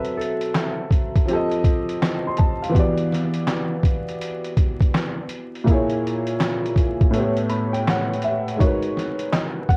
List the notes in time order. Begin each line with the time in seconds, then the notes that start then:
Already playing: F#3 C4 F#4 A4 B4 E5
0.05 closed hi-hat
0.17 A4
0.21 closed hi-hat
0.41 closed hi-hat
0.55 snare, clap, closed hi-hat
0.91 kick, closed hi-hat
1.16 kick, closed hi-hat
1.26 F3 C4, closed hi-hat
1.30 G4 A4
1.35 D#5
1.51 closed hi-hat
1.64 kick, closed hi-hat
1.89 closed hi-hat
2.02 snare, clap, closed hi-hat
2.27 C6
2.37 A5, kick, closed hi-hat
2.62 F5, closed hi-hat
2.69 E3 B3
2.74 F#4 G4, kick, closed hi-hat
2.79 D5
2.98 closed hi-hat
3.12 snare, closed hi-hat
3.34 closed hi-hat
3.47 snare, clap, closed hi-hat
3.83 kick, closed hi-hat
4.09 closed hi-hat
4.21 closed hi-hat
4.44 closed hi-hat
4.57 kick, closed hi-hat
4.80 kick, closed hi-hat
4.94 snare, clap, closed hi-hat
5.29 closed hi-hat
5.55 closed hi-hat
5.64 A#2 A#3, kick, closed hi-hat
5.69 E4 G#4
5.74 C#5
5.90 closed hi-hat
6.07 closed hi-hat
6.27 closed hi-hat
6.40 snare, clap, closed hi-hat
6.66 closed hi-hat
6.76 kick, closed hi-hat
7.01 kick, closed hi-hat
7.11 A2 A3, closed hi-hat
7.15 B3 G4
7.20 C#5
7.37 closed hi-hat
7.49 B5, closed hi-hat
7.73 G5, closed hi-hat
7.87 F#5, snare, clap, closed hi-hat
8.13 closed hi-hat
8.22 E5, closed hi-hat
8.48 closed hi-hat
8.56 G#3 D#4 C#5, kick
8.61 F#4 A#4, closed hi-hat
8.66 B4
8.82 closed hi-hat
8.97 snare, closed hi-hat
9.19 closed hi-hat
9.32 D#5, snare, clap, closed hi-hat
9.69 F#5, kick, closed hi-hat